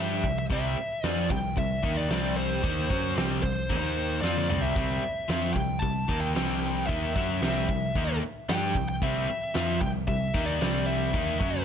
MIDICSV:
0, 0, Header, 1, 7, 480
1, 0, Start_track
1, 0, Tempo, 531444
1, 460, Time_signature, 4, 2, 24, 8
1, 10520, End_track
2, 0, Start_track
2, 0, Title_t, "Lead electric guitar"
2, 0, Program_c, 0, 29
2, 0, Note_on_c, 0, 76, 74
2, 337, Note_off_c, 0, 76, 0
2, 348, Note_on_c, 0, 76, 83
2, 393, Note_off_c, 0, 76, 0
2, 476, Note_on_c, 0, 76, 86
2, 973, Note_off_c, 0, 76, 0
2, 973, Note_on_c, 0, 74, 86
2, 1153, Note_off_c, 0, 74, 0
2, 1187, Note_on_c, 0, 79, 94
2, 1426, Note_off_c, 0, 79, 0
2, 1430, Note_on_c, 0, 76, 94
2, 1762, Note_off_c, 0, 76, 0
2, 1777, Note_on_c, 0, 74, 76
2, 2138, Note_off_c, 0, 74, 0
2, 2141, Note_on_c, 0, 72, 81
2, 2828, Note_off_c, 0, 72, 0
2, 3096, Note_on_c, 0, 72, 77
2, 3803, Note_off_c, 0, 72, 0
2, 3807, Note_on_c, 0, 74, 73
2, 4170, Note_on_c, 0, 76, 91
2, 4188, Note_off_c, 0, 74, 0
2, 4983, Note_off_c, 0, 76, 0
2, 5001, Note_on_c, 0, 79, 83
2, 5231, Note_on_c, 0, 81, 87
2, 5237, Note_off_c, 0, 79, 0
2, 5604, Note_on_c, 0, 79, 95
2, 5621, Note_off_c, 0, 81, 0
2, 5949, Note_off_c, 0, 79, 0
2, 5960, Note_on_c, 0, 79, 93
2, 6198, Note_off_c, 0, 79, 0
2, 6202, Note_on_c, 0, 76, 87
2, 6432, Note_off_c, 0, 76, 0
2, 6443, Note_on_c, 0, 76, 74
2, 7379, Note_off_c, 0, 76, 0
2, 7679, Note_on_c, 0, 79, 94
2, 8009, Note_off_c, 0, 79, 0
2, 8027, Note_on_c, 0, 79, 93
2, 8154, Note_off_c, 0, 79, 0
2, 8154, Note_on_c, 0, 76, 86
2, 8861, Note_off_c, 0, 76, 0
2, 8864, Note_on_c, 0, 79, 95
2, 8929, Note_off_c, 0, 79, 0
2, 9102, Note_on_c, 0, 76, 86
2, 9438, Note_off_c, 0, 76, 0
2, 9446, Note_on_c, 0, 74, 82
2, 9789, Note_off_c, 0, 74, 0
2, 9813, Note_on_c, 0, 76, 77
2, 10501, Note_off_c, 0, 76, 0
2, 10520, End_track
3, 0, Start_track
3, 0, Title_t, "Overdriven electric guitar"
3, 0, Program_c, 1, 29
3, 0, Note_on_c, 1, 55, 80
3, 0, Note_on_c, 1, 62, 93
3, 0, Note_on_c, 1, 67, 90
3, 206, Note_off_c, 1, 55, 0
3, 208, Note_off_c, 1, 62, 0
3, 213, Note_off_c, 1, 67, 0
3, 216, Note_on_c, 1, 48, 53
3, 216, Note_on_c, 1, 55, 65
3, 410, Note_off_c, 1, 48, 0
3, 410, Note_off_c, 1, 55, 0
3, 449, Note_on_c, 1, 48, 79
3, 454, Note_on_c, 1, 55, 83
3, 457, Note_on_c, 1, 60, 83
3, 687, Note_off_c, 1, 48, 0
3, 690, Note_off_c, 1, 55, 0
3, 691, Note_off_c, 1, 60, 0
3, 939, Note_on_c, 1, 53, 84
3, 945, Note_on_c, 1, 60, 78
3, 947, Note_on_c, 1, 65, 92
3, 1173, Note_off_c, 1, 53, 0
3, 1176, Note_off_c, 1, 60, 0
3, 1177, Note_off_c, 1, 65, 0
3, 1180, Note_on_c, 1, 48, 52
3, 1187, Note_on_c, 1, 55, 62
3, 1373, Note_off_c, 1, 48, 0
3, 1377, Note_off_c, 1, 55, 0
3, 1408, Note_on_c, 1, 48, 61
3, 1417, Note_on_c, 1, 55, 64
3, 1608, Note_off_c, 1, 48, 0
3, 1612, Note_off_c, 1, 55, 0
3, 1649, Note_on_c, 1, 51, 88
3, 1653, Note_on_c, 1, 58, 74
3, 1659, Note_on_c, 1, 63, 76
3, 1889, Note_off_c, 1, 51, 0
3, 1891, Note_off_c, 1, 58, 0
3, 1894, Note_off_c, 1, 63, 0
3, 1895, Note_on_c, 1, 48, 83
3, 1900, Note_on_c, 1, 55, 79
3, 1902, Note_on_c, 1, 60, 83
3, 2368, Note_off_c, 1, 48, 0
3, 2372, Note_on_c, 1, 51, 75
3, 2374, Note_off_c, 1, 55, 0
3, 2375, Note_off_c, 1, 60, 0
3, 2377, Note_on_c, 1, 58, 83
3, 2379, Note_on_c, 1, 63, 85
3, 2610, Note_off_c, 1, 51, 0
3, 2613, Note_on_c, 1, 54, 81
3, 2614, Note_off_c, 1, 58, 0
3, 2615, Note_off_c, 1, 63, 0
3, 2619, Note_on_c, 1, 61, 84
3, 2623, Note_on_c, 1, 66, 77
3, 2850, Note_off_c, 1, 54, 0
3, 2853, Note_on_c, 1, 48, 83
3, 2855, Note_off_c, 1, 61, 0
3, 2857, Note_off_c, 1, 66, 0
3, 2860, Note_on_c, 1, 55, 87
3, 2865, Note_on_c, 1, 60, 88
3, 3083, Note_off_c, 1, 48, 0
3, 3087, Note_off_c, 1, 55, 0
3, 3094, Note_on_c, 1, 48, 55
3, 3097, Note_on_c, 1, 55, 60
3, 3098, Note_off_c, 1, 60, 0
3, 3292, Note_off_c, 1, 48, 0
3, 3294, Note_off_c, 1, 55, 0
3, 3338, Note_on_c, 1, 51, 81
3, 3340, Note_on_c, 1, 58, 81
3, 3342, Note_on_c, 1, 63, 81
3, 3814, Note_off_c, 1, 51, 0
3, 3816, Note_off_c, 1, 58, 0
3, 3817, Note_on_c, 1, 53, 77
3, 3818, Note_off_c, 1, 63, 0
3, 3823, Note_on_c, 1, 60, 79
3, 3826, Note_on_c, 1, 65, 95
3, 4047, Note_off_c, 1, 60, 0
3, 4051, Note_off_c, 1, 53, 0
3, 4055, Note_off_c, 1, 65, 0
3, 4055, Note_on_c, 1, 48, 71
3, 4058, Note_on_c, 1, 55, 75
3, 4058, Note_on_c, 1, 60, 74
3, 4288, Note_off_c, 1, 48, 0
3, 4292, Note_off_c, 1, 55, 0
3, 4296, Note_off_c, 1, 60, 0
3, 4299, Note_on_c, 1, 48, 79
3, 4303, Note_on_c, 1, 55, 89
3, 4306, Note_on_c, 1, 60, 78
3, 4528, Note_off_c, 1, 48, 0
3, 4538, Note_off_c, 1, 55, 0
3, 4540, Note_off_c, 1, 60, 0
3, 4771, Note_on_c, 1, 53, 76
3, 4779, Note_on_c, 1, 60, 84
3, 4783, Note_on_c, 1, 65, 83
3, 5012, Note_off_c, 1, 53, 0
3, 5015, Note_off_c, 1, 60, 0
3, 5015, Note_on_c, 1, 48, 56
3, 5019, Note_off_c, 1, 65, 0
3, 5019, Note_on_c, 1, 55, 68
3, 5214, Note_off_c, 1, 48, 0
3, 5216, Note_off_c, 1, 55, 0
3, 5256, Note_on_c, 1, 48, 59
3, 5259, Note_on_c, 1, 55, 60
3, 5454, Note_off_c, 1, 48, 0
3, 5456, Note_off_c, 1, 55, 0
3, 5491, Note_on_c, 1, 51, 76
3, 5495, Note_on_c, 1, 58, 83
3, 5498, Note_on_c, 1, 63, 85
3, 5729, Note_off_c, 1, 51, 0
3, 5731, Note_off_c, 1, 58, 0
3, 5732, Note_on_c, 1, 48, 76
3, 5735, Note_on_c, 1, 55, 80
3, 5736, Note_off_c, 1, 63, 0
3, 5741, Note_on_c, 1, 60, 87
3, 6211, Note_off_c, 1, 48, 0
3, 6215, Note_off_c, 1, 55, 0
3, 6215, Note_on_c, 1, 51, 84
3, 6217, Note_off_c, 1, 60, 0
3, 6219, Note_on_c, 1, 58, 90
3, 6221, Note_on_c, 1, 63, 90
3, 6455, Note_off_c, 1, 51, 0
3, 6457, Note_off_c, 1, 58, 0
3, 6458, Note_off_c, 1, 63, 0
3, 6459, Note_on_c, 1, 54, 75
3, 6463, Note_on_c, 1, 61, 77
3, 6470, Note_on_c, 1, 66, 91
3, 6696, Note_off_c, 1, 54, 0
3, 6699, Note_off_c, 1, 61, 0
3, 6701, Note_off_c, 1, 66, 0
3, 6701, Note_on_c, 1, 48, 82
3, 6705, Note_on_c, 1, 60, 86
3, 6706, Note_on_c, 1, 55, 82
3, 6933, Note_off_c, 1, 48, 0
3, 6940, Note_off_c, 1, 55, 0
3, 6940, Note_off_c, 1, 60, 0
3, 6944, Note_on_c, 1, 48, 60
3, 6949, Note_on_c, 1, 55, 59
3, 7138, Note_off_c, 1, 48, 0
3, 7141, Note_off_c, 1, 55, 0
3, 7187, Note_on_c, 1, 51, 80
3, 7190, Note_on_c, 1, 58, 86
3, 7193, Note_on_c, 1, 63, 88
3, 7421, Note_off_c, 1, 51, 0
3, 7422, Note_off_c, 1, 58, 0
3, 7423, Note_off_c, 1, 63, 0
3, 7669, Note_on_c, 1, 55, 89
3, 7673, Note_on_c, 1, 67, 91
3, 7674, Note_on_c, 1, 62, 84
3, 7901, Note_off_c, 1, 55, 0
3, 7903, Note_off_c, 1, 67, 0
3, 7904, Note_off_c, 1, 62, 0
3, 7909, Note_on_c, 1, 48, 48
3, 7915, Note_on_c, 1, 55, 59
3, 8100, Note_off_c, 1, 48, 0
3, 8103, Note_off_c, 1, 55, 0
3, 8150, Note_on_c, 1, 48, 84
3, 8154, Note_on_c, 1, 55, 79
3, 8159, Note_on_c, 1, 60, 99
3, 8379, Note_off_c, 1, 48, 0
3, 8383, Note_off_c, 1, 55, 0
3, 8386, Note_off_c, 1, 60, 0
3, 8621, Note_on_c, 1, 53, 77
3, 8624, Note_on_c, 1, 60, 94
3, 8629, Note_on_c, 1, 65, 85
3, 8856, Note_off_c, 1, 53, 0
3, 8858, Note_off_c, 1, 60, 0
3, 8860, Note_off_c, 1, 65, 0
3, 8867, Note_on_c, 1, 48, 63
3, 8868, Note_on_c, 1, 55, 72
3, 9058, Note_off_c, 1, 48, 0
3, 9059, Note_off_c, 1, 55, 0
3, 9100, Note_on_c, 1, 48, 55
3, 9110, Note_on_c, 1, 55, 60
3, 9295, Note_off_c, 1, 48, 0
3, 9300, Note_off_c, 1, 55, 0
3, 9337, Note_on_c, 1, 51, 71
3, 9342, Note_on_c, 1, 58, 79
3, 9348, Note_on_c, 1, 63, 87
3, 9574, Note_off_c, 1, 51, 0
3, 9576, Note_off_c, 1, 58, 0
3, 9579, Note_off_c, 1, 63, 0
3, 9580, Note_on_c, 1, 48, 80
3, 9583, Note_on_c, 1, 55, 85
3, 9591, Note_on_c, 1, 60, 92
3, 10052, Note_off_c, 1, 48, 0
3, 10056, Note_off_c, 1, 55, 0
3, 10056, Note_on_c, 1, 51, 95
3, 10060, Note_off_c, 1, 60, 0
3, 10063, Note_on_c, 1, 58, 93
3, 10065, Note_on_c, 1, 63, 86
3, 10285, Note_off_c, 1, 51, 0
3, 10289, Note_on_c, 1, 54, 84
3, 10290, Note_off_c, 1, 58, 0
3, 10292, Note_off_c, 1, 63, 0
3, 10293, Note_on_c, 1, 61, 89
3, 10295, Note_on_c, 1, 66, 91
3, 10520, Note_off_c, 1, 54, 0
3, 10520, Note_off_c, 1, 61, 0
3, 10520, Note_off_c, 1, 66, 0
3, 10520, End_track
4, 0, Start_track
4, 0, Title_t, "Picked electric bass"
4, 0, Program_c, 2, 34
4, 0, Note_on_c, 2, 43, 83
4, 206, Note_off_c, 2, 43, 0
4, 213, Note_on_c, 2, 36, 72
4, 439, Note_off_c, 2, 36, 0
4, 458, Note_on_c, 2, 36, 81
4, 682, Note_off_c, 2, 36, 0
4, 939, Note_on_c, 2, 41, 90
4, 1163, Note_off_c, 2, 41, 0
4, 1178, Note_on_c, 2, 36, 65
4, 1403, Note_off_c, 2, 36, 0
4, 1421, Note_on_c, 2, 36, 72
4, 1645, Note_off_c, 2, 36, 0
4, 1659, Note_on_c, 2, 39, 74
4, 1885, Note_off_c, 2, 39, 0
4, 1904, Note_on_c, 2, 36, 88
4, 2351, Note_off_c, 2, 36, 0
4, 2385, Note_on_c, 2, 39, 86
4, 2608, Note_off_c, 2, 39, 0
4, 2625, Note_on_c, 2, 42, 84
4, 2848, Note_off_c, 2, 42, 0
4, 2871, Note_on_c, 2, 36, 82
4, 3092, Note_off_c, 2, 36, 0
4, 3105, Note_on_c, 2, 36, 70
4, 3329, Note_off_c, 2, 36, 0
4, 3345, Note_on_c, 2, 39, 85
4, 3793, Note_off_c, 2, 39, 0
4, 3815, Note_on_c, 2, 41, 81
4, 4044, Note_off_c, 2, 41, 0
4, 4058, Note_on_c, 2, 36, 82
4, 4286, Note_off_c, 2, 36, 0
4, 4305, Note_on_c, 2, 36, 82
4, 4530, Note_off_c, 2, 36, 0
4, 4780, Note_on_c, 2, 41, 87
4, 5008, Note_off_c, 2, 41, 0
4, 5022, Note_on_c, 2, 36, 65
4, 5248, Note_off_c, 2, 36, 0
4, 5261, Note_on_c, 2, 36, 65
4, 5488, Note_off_c, 2, 36, 0
4, 5501, Note_on_c, 2, 39, 67
4, 5728, Note_off_c, 2, 39, 0
4, 5745, Note_on_c, 2, 36, 78
4, 6193, Note_off_c, 2, 36, 0
4, 6228, Note_on_c, 2, 39, 89
4, 6451, Note_off_c, 2, 39, 0
4, 6466, Note_on_c, 2, 42, 88
4, 6691, Note_off_c, 2, 42, 0
4, 6702, Note_on_c, 2, 36, 87
4, 6928, Note_off_c, 2, 36, 0
4, 6944, Note_on_c, 2, 36, 72
4, 7169, Note_off_c, 2, 36, 0
4, 7185, Note_on_c, 2, 39, 76
4, 7410, Note_off_c, 2, 39, 0
4, 7666, Note_on_c, 2, 43, 84
4, 7890, Note_off_c, 2, 43, 0
4, 7907, Note_on_c, 2, 36, 68
4, 8131, Note_off_c, 2, 36, 0
4, 8146, Note_on_c, 2, 36, 86
4, 8369, Note_off_c, 2, 36, 0
4, 8637, Note_on_c, 2, 41, 95
4, 8855, Note_off_c, 2, 41, 0
4, 8866, Note_on_c, 2, 36, 69
4, 9089, Note_off_c, 2, 36, 0
4, 9104, Note_on_c, 2, 36, 74
4, 9328, Note_off_c, 2, 36, 0
4, 9345, Note_on_c, 2, 39, 77
4, 9568, Note_off_c, 2, 39, 0
4, 9592, Note_on_c, 2, 36, 87
4, 10034, Note_off_c, 2, 36, 0
4, 10063, Note_on_c, 2, 39, 84
4, 10286, Note_off_c, 2, 39, 0
4, 10304, Note_on_c, 2, 42, 88
4, 10520, Note_off_c, 2, 42, 0
4, 10520, End_track
5, 0, Start_track
5, 0, Title_t, "Muted overdriven electric guitar strokes"
5, 699, Note_on_c, 9, 29, 47
5, 789, Note_off_c, 9, 29, 0
5, 4539, Note_on_c, 9, 29, 52
5, 4629, Note_off_c, 9, 29, 0
5, 7430, Note_on_c, 9, 29, 55
5, 7520, Note_off_c, 9, 29, 0
5, 8389, Note_on_c, 9, 29, 52
5, 8480, Note_off_c, 9, 29, 0
5, 10520, End_track
6, 0, Start_track
6, 0, Title_t, "Muted picked electric bass strokes"
6, 702, Note_on_c, 9, 29, 34
6, 793, Note_off_c, 9, 29, 0
6, 4535, Note_on_c, 9, 29, 35
6, 4625, Note_off_c, 9, 29, 0
6, 7429, Note_on_c, 9, 29, 30
6, 7519, Note_off_c, 9, 29, 0
6, 8397, Note_on_c, 9, 29, 38
6, 8487, Note_off_c, 9, 29, 0
6, 10520, End_track
7, 0, Start_track
7, 0, Title_t, "Drums"
7, 215, Note_on_c, 9, 36, 86
7, 306, Note_off_c, 9, 36, 0
7, 456, Note_on_c, 9, 36, 94
7, 457, Note_on_c, 9, 46, 52
7, 546, Note_off_c, 9, 36, 0
7, 547, Note_off_c, 9, 46, 0
7, 934, Note_on_c, 9, 46, 46
7, 939, Note_on_c, 9, 38, 94
7, 1024, Note_off_c, 9, 46, 0
7, 1029, Note_off_c, 9, 38, 0
7, 1177, Note_on_c, 9, 36, 81
7, 1267, Note_off_c, 9, 36, 0
7, 1416, Note_on_c, 9, 46, 43
7, 1418, Note_on_c, 9, 36, 70
7, 1506, Note_off_c, 9, 46, 0
7, 1509, Note_off_c, 9, 36, 0
7, 1660, Note_on_c, 9, 36, 98
7, 1750, Note_off_c, 9, 36, 0
7, 1899, Note_on_c, 9, 46, 47
7, 1904, Note_on_c, 9, 38, 95
7, 1990, Note_off_c, 9, 46, 0
7, 1994, Note_off_c, 9, 38, 0
7, 2383, Note_on_c, 9, 36, 106
7, 2385, Note_on_c, 9, 46, 54
7, 2473, Note_off_c, 9, 36, 0
7, 2475, Note_off_c, 9, 46, 0
7, 2623, Note_on_c, 9, 36, 101
7, 2713, Note_off_c, 9, 36, 0
7, 2866, Note_on_c, 9, 46, 51
7, 2871, Note_on_c, 9, 38, 93
7, 2957, Note_off_c, 9, 46, 0
7, 2961, Note_off_c, 9, 38, 0
7, 3103, Note_on_c, 9, 36, 75
7, 3194, Note_off_c, 9, 36, 0
7, 3341, Note_on_c, 9, 46, 46
7, 3342, Note_on_c, 9, 36, 88
7, 3431, Note_off_c, 9, 46, 0
7, 3433, Note_off_c, 9, 36, 0
7, 3831, Note_on_c, 9, 38, 53
7, 3921, Note_off_c, 9, 38, 0
7, 3953, Note_on_c, 9, 48, 48
7, 4044, Note_off_c, 9, 48, 0
7, 4064, Note_on_c, 9, 45, 72
7, 4155, Note_off_c, 9, 45, 0
7, 4179, Note_on_c, 9, 43, 65
7, 4270, Note_off_c, 9, 43, 0
7, 4302, Note_on_c, 9, 36, 94
7, 4303, Note_on_c, 9, 46, 52
7, 4392, Note_off_c, 9, 36, 0
7, 4393, Note_off_c, 9, 46, 0
7, 4780, Note_on_c, 9, 46, 47
7, 4785, Note_on_c, 9, 38, 107
7, 4871, Note_off_c, 9, 46, 0
7, 4875, Note_off_c, 9, 38, 0
7, 5021, Note_on_c, 9, 36, 75
7, 5112, Note_off_c, 9, 36, 0
7, 5261, Note_on_c, 9, 36, 68
7, 5261, Note_on_c, 9, 46, 46
7, 5351, Note_off_c, 9, 36, 0
7, 5351, Note_off_c, 9, 46, 0
7, 5500, Note_on_c, 9, 36, 84
7, 5591, Note_off_c, 9, 36, 0
7, 5743, Note_on_c, 9, 46, 47
7, 5748, Note_on_c, 9, 38, 99
7, 5833, Note_off_c, 9, 46, 0
7, 5838, Note_off_c, 9, 38, 0
7, 6225, Note_on_c, 9, 36, 92
7, 6225, Note_on_c, 9, 46, 47
7, 6315, Note_off_c, 9, 46, 0
7, 6316, Note_off_c, 9, 36, 0
7, 6466, Note_on_c, 9, 36, 92
7, 6556, Note_off_c, 9, 36, 0
7, 6702, Note_on_c, 9, 46, 51
7, 6707, Note_on_c, 9, 38, 89
7, 6793, Note_off_c, 9, 46, 0
7, 6797, Note_off_c, 9, 38, 0
7, 6945, Note_on_c, 9, 36, 80
7, 7035, Note_off_c, 9, 36, 0
7, 7185, Note_on_c, 9, 36, 93
7, 7187, Note_on_c, 9, 46, 47
7, 7275, Note_off_c, 9, 36, 0
7, 7277, Note_off_c, 9, 46, 0
7, 7667, Note_on_c, 9, 46, 51
7, 7671, Note_on_c, 9, 38, 109
7, 7757, Note_off_c, 9, 46, 0
7, 7762, Note_off_c, 9, 38, 0
7, 7905, Note_on_c, 9, 36, 83
7, 7996, Note_off_c, 9, 36, 0
7, 8146, Note_on_c, 9, 36, 98
7, 8147, Note_on_c, 9, 46, 55
7, 8236, Note_off_c, 9, 36, 0
7, 8238, Note_off_c, 9, 46, 0
7, 8623, Note_on_c, 9, 46, 50
7, 8627, Note_on_c, 9, 38, 97
7, 8713, Note_off_c, 9, 46, 0
7, 8718, Note_off_c, 9, 38, 0
7, 8865, Note_on_c, 9, 36, 77
7, 8955, Note_off_c, 9, 36, 0
7, 9103, Note_on_c, 9, 36, 75
7, 9106, Note_on_c, 9, 46, 50
7, 9193, Note_off_c, 9, 36, 0
7, 9196, Note_off_c, 9, 46, 0
7, 9343, Note_on_c, 9, 36, 93
7, 9433, Note_off_c, 9, 36, 0
7, 9588, Note_on_c, 9, 46, 48
7, 9592, Note_on_c, 9, 38, 90
7, 9678, Note_off_c, 9, 46, 0
7, 9683, Note_off_c, 9, 38, 0
7, 10062, Note_on_c, 9, 36, 98
7, 10065, Note_on_c, 9, 46, 53
7, 10153, Note_off_c, 9, 36, 0
7, 10156, Note_off_c, 9, 46, 0
7, 10302, Note_on_c, 9, 36, 106
7, 10393, Note_off_c, 9, 36, 0
7, 10520, End_track
0, 0, End_of_file